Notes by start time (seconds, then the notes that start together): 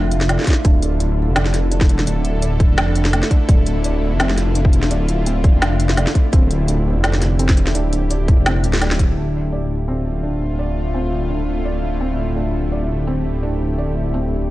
Already playing: F1 D3 A3 D4 E4 F4 D5
0.11 closed hi-hat
0.21 snare
0.29 D5, snare, closed hi-hat
0.39 snare
0.41 snare
0.44 kick, snare
0.47 snare, closed hi-hat
0.50 snare
0.53 snare
0.65 D1 D4 A4, kick, closed hi-hat
0.83 closed hi-hat
1.00 D4, closed hi-hat
1.28 F1
1.36 D5, snare, closed hi-hat
1.46 snare
1.54 snare, closed hi-hat
1.71 D4, closed hi-hat
1.81 kick, snare
1.89 E1, closed hi-hat
1.99 snare
2.07 D1 D4, closed hi-hat
2.25 closed hi-hat
2.42 D5, closed hi-hat
2.60 kick, closed hi-hat
2.70 F1
2.78 D4, snare, closed hi-hat
2.96 closed hi-hat
3.05 snare
3.13 A3, snare, closed hi-hat
3.23 snare
3.31 D4, kick, closed hi-hat
3.49 D1 D4 F4, kick, closed hi-hat
3.67 closed hi-hat
3.84 D5, closed hi-hat
4.12 F1
4.20 C4, snare, closed hi-hat
4.29 snare
4.38 snare, closed hi-hat
4.55 D4, closed hi-hat
4.65 kick
4.73 E1, closed hi-hat
4.83 snare
4.91 D1 D5, closed hi-hat
5.09 closed hi-hat
5.26 C4, closed hi-hat
5.44 kick, closed hi-hat
5.54 F1
5.62 D4, snare, closed hi-hat
5.80 closed hi-hat
5.89 snare
5.97 D5, snare, closed hi-hat
6.07 snare
6.15 kick, closed hi-hat
6.33 D1 C4 G4, kick, closed hi-hat
6.51 closed hi-hat
6.68 D4, closed hi-hat
6.96 F1
7.04 D5, snare, closed hi-hat
7.14 snare
7.22 snare, closed hi-hat
7.39 C4, closed hi-hat
7.49 kick, snare
7.57 E1, closed hi-hat
7.67 snare
7.75 D1 D4, closed hi-hat
7.93 closed hi-hat
8.11 D5, closed hi-hat
8.28 kick, closed hi-hat
8.38 F1
8.46 C4, snare, closed hi-hat
8.64 D1, closed hi-hat
8.73 snare
8.75 snare
8.77 snare
8.79 snare
8.81 D5, snare, closed hi-hat
8.84 snare
8.86 snare
8.89 snare
8.91 snare
8.99 D1, kick, closed hi-hat
9.17 D1 D3 A3 D4 E4 F4
9.53 D5
9.88 C4
10.23 D4
10.59 D5
10.94 C4
11.30 D4
11.65 D5
12.01 C4 G4
12.36 D4
12.72 D5
13.07 C4
13.43 D4
13.78 D5
14.14 C4